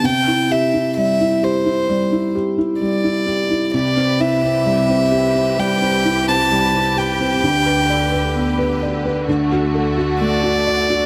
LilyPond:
<<
  \new Staff \with { instrumentName = "Violin" } { \time 4/4 \key c \lydian \tempo 4 = 65 g''8 e''8 e''8 c''4 r8 d''4 | d''8 e''4. g''8. a''8. g''8~ | g''4. r4. d''4 | }
  \new Staff \with { instrumentName = "Felt piano" } { \time 4/4 \key c \lydian c16 e'16 g'16 e'16 g16 e'16 g'16 e'16 g16 e'16 g'16 e'16 g16 e'16 g'16 e'16 | c16 c'16 e'16 c'16 g16 c'16 g'16 c'16 g16 c'16 e'16 c'16 g16 c'16 g'16 c'16 | d16 b'16 d''16 b'16 b16 b'16 d''16 b'16 d16 fis'16 a'16 fis'16 a16 fis'16 d''16 fis'16 | }
  \new Staff \with { instrumentName = "String section" } { \clef bass \time 4/4 \key c \lydian << { r1 | <g' b'>1~ | <g' b'>2 <a fis'>2 | } \\ { r1 | <c, c>1 | <d, d>1 | } >> }
>>